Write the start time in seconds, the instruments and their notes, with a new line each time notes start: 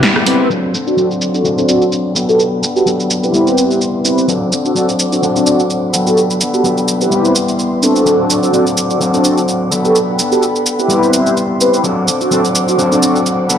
0.02 clean electric guitar G3 B3 E4 G4, snare
0.16 cross-stick
0.25 clean electric guitar G3 B3 E4 G4, analog polysynth C4 E4 G4 B4, open hi-hat
0.39 clean electric guitar B3 E4 G4
0.49 clean electric guitar F#3 C4 D4 A4, violin section F#4 D5 C6, shaker
0.73 clean electric guitar C4 D4 A4, shaker
0.86 analog polysynth C4 D4 F#4 A4, shaker
0.96 clean electric guitar F#3 C4 D4 A4, shaker
1.11 shaker
1.21 shaker
1.34 analog polysynth C4 D4 F#4 A4, shaker
1.44 clean electric guitar F#3 C4 D4 A4, shaker
1.57 analog polysynth C4 D4 F#4 A4, shaker
1.68 analog polysynth C4 D4 F#4 A4, shaker
1.82 shaker
1.92 shaker
2.15 clean electric guitar F#3 B3 D4 A4, violin section A4 F#5 G5 B5, shaker
2.28 analog polysynth B3 F#4 G4 A4, shaker
2.40 shaker
2.62 clean electric guitar B3 D4 A4, shaker
2.75 analog polysynth B3 F#4 G4 A4, shaker
2.85 clean electric guitar F#3 B3 D4 A4, shaker
3.00 shaker
3.10 shaker
3.22 analog polysynth C4 E4 G4 B4, shaker
3.32 clean electric guitar G3 B3 E4, violin section B3 E5 C6, shaker
3.37 clean electric guitar G4
3.47 shaker
3.57 analog polysynth C4 E4 G4 B4, shaker
3.71 shaker
3.81 shaker
4.04 analog polysynth C4 E4 G4 B4, shaker
4.18 shaker
4.27 clean electric guitar F#3 C4 D4 A4, violin section C5 F#5 D6, shaker
4.51 clean electric guitar C4 D4 A4, shaker
4.64 analog polysynth C4 D4 F#4 A4, shaker
4.75 clean electric guitar F#3 C4 D4 A4, shaker
4.89 shaker
4.99 shaker
5.12 analog polysynth C4 D4 F#4 A4, shaker
5.22 clean electric guitar F#3 C4 D4 A4, shaker
5.35 analog polysynth C4 D4 F#4 A4, shaker
5.46 analog polysynth C4 D4 F#4 A4, shaker
5.60 shaker
5.70 shaker
5.93 clean electric guitar F#3 B3 D4 A4, violin section A4 G5 B5, shaker
6.06 analog polysynth B3 F#4 G4 A4, shaker
6.17 shaker
6.30 shaker
6.40 clean electric guitar B3 D4 A4, shaker
6.53 analog polysynth B3 F#4 G4 A4, shaker
6.63 clean electric guitar F#3 B3 D4 A4, shaker
6.78 shaker
6.88 shaker
7.00 analog polysynth C4 E4 G4 B4, shaker
7.10 clean electric guitar G3 B3 E4, violin section B3 E5 C6, shaker
7.15 clean electric guitar G4
7.25 shaker
7.35 shaker
7.48 shaker
7.59 shaker
7.82 analog polysynth C4 D4 F#4 A4, shaker
7.96 shaker
8.05 clean electric guitar F#3 C4 D4 A4, violin section C5 F#5 D6, shaker
8.30 shaker
8.43 analog polysynth C4 D4 F#4 A4, shaker
8.52 clean electric guitar F#3 C4 D4 A4, shaker
8.67 shaker
8.77 shaker
8.89 analog polysynth C4 D4 F#4 A4, shaker
9.00 clean electric guitar F#3 C4 D4 A4, shaker
9.13 analog polysynth C4 D4 F#4 A4, shaker
9.24 analog polysynth C4 D4 F#4 A4, shaker
9.38 shaker
9.48 shaker
9.71 clean electric guitar F#3 B3 D4 A4, violin section A4 G5 B5, shaker
9.84 analog polysynth B3 F#4 G4 A4, shaker
9.95 shaker
10.18 clean electric guitar B3 D4 A4, shaker
10.31 analog polysynth B3 F#4 G4 A4, shaker
10.43 shaker
10.56 shaker
10.66 shaker
10.79 analog polysynth C4 E4 G4 B4, shaker
10.88 clean electric guitar G3 B3 E4, violin section B3 E5 C6, shaker
10.92 clean electric guitar G4
11.03 shaker
11.13 analog polysynth C4 E4 G4 B4, shaker
11.26 shaker
11.37 shaker
11.60 analog polysynth C4 E4 G4 B4, shaker
11.74 shaker
11.83 clean electric guitar F#3 C4 D4 A4, violin section C5 F#5 D6, shaker
12.07 clean electric guitar C4 D4 A4, shaker
12.20 analog polysynth C4 D4 F#4 A4, shaker
12.30 clean electric guitar F#3 C4 D4 A4, shaker
12.45 shaker
12.55 shaker
12.68 analog polysynth C4 D4 F#4 A4, shaker
12.78 clean electric guitar F#3 C4 D4 A4, shaker
12.91 analog polysynth C4 D4 F#4 A4, shaker
13.02 analog polysynth C4 D4 F#4 A4, shaker
13.16 shaker
13.26 shaker
13.49 clean electric guitar F#3 B3 D4 A4, violin section A4 G5 B5, shaker